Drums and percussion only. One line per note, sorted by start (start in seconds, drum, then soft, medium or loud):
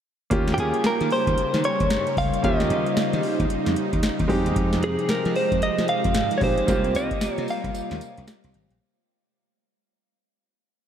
0.31 kick loud
0.31 closed hi-hat medium
0.48 snare medium
0.48 closed hi-hat soft
0.58 closed hi-hat medium
0.74 closed hi-hat medium
0.84 snare loud
0.84 closed hi-hat medium
1.01 closed hi-hat soft
1.10 open hi-hat medium
1.27 kick medium
1.27 closed hi-hat medium
1.38 closed hi-hat medium
1.54 snare medium
1.54 closed hi-hat medium
1.64 closed hi-hat medium
1.80 kick loud
1.80 closed hi-hat medium
1.90 snare loud
1.90 closed hi-hat medium
2.07 closed hi-hat medium
2.17 kick loud
2.17 open hi-hat medium
2.34 closed hi-hat medium
2.44 kick loud
2.44 closed hi-hat medium
2.60 snare medium
2.60 closed hi-hat soft
2.70 closed hi-hat medium
2.87 closed hi-hat soft
2.97 snare loud
2.97 closed hi-hat medium
3.13 closed hi-hat medium
3.23 open hi-hat medium
3.40 kick medium
3.40 closed hi-hat medium
3.50 closed hi-hat medium
3.66 snare medium
3.66 closed hi-hat medium
3.76 closed hi-hat medium
3.93 kick loud
3.93 closed hi-hat medium
4.03 snare loud
4.03 closed hi-hat medium
4.19 kick medium
4.19 closed hi-hat medium
4.29 kick medium
4.29 open hi-hat medium
4.46 closed hi-hat medium
4.56 kick loud
4.56 closed hi-hat medium
4.73 snare medium
4.73 closed hi-hat soft
4.83 closed hi-hat medium
4.99 closed hi-hat soft
5.09 snare loud
5.09 closed hi-hat medium
5.25 closed hi-hat soft
5.36 open hi-hat medium
5.52 kick medium
5.52 closed hi-hat medium
5.62 closed hi-hat medium
5.78 snare medium
5.78 closed hi-hat medium
5.88 closed hi-hat medium
6.04 kick loud
6.04 closed hi-hat medium
6.14 snare loud
6.14 closed hi-hat medium
6.31 closed hi-hat medium
6.41 kick loud
6.41 open hi-hat medium
6.58 closed hi-hat medium
6.68 kick loud
6.68 closed hi-hat medium
6.68 tambourine medium
6.84 closed hi-hat soft
6.95 closed hi-hat medium
6.95 tambourine medium
7.11 kick medium
7.11 closed hi-hat medium
7.21 snare loud
7.21 closed hi-hat medium
7.21 tambourine loud
7.38 closed hi-hat medium
7.48 open hi-hat medium
7.48 tambourine medium
7.64 kick medium
7.64 closed hi-hat medium
7.75 closed hi-hat medium
7.75 tambourine medium
7.91 snare medium
7.91 closed hi-hat medium
8.01 closed hi-hat medium
8.01 tambourine medium
8.17 closed hi-hat medium
8.27 snare loud
8.27 closed hi-hat medium
8.27 tambourine loud
8.44 closed hi-hat medium
8.54 closed hi-hat medium
8.70 closed hi-hat medium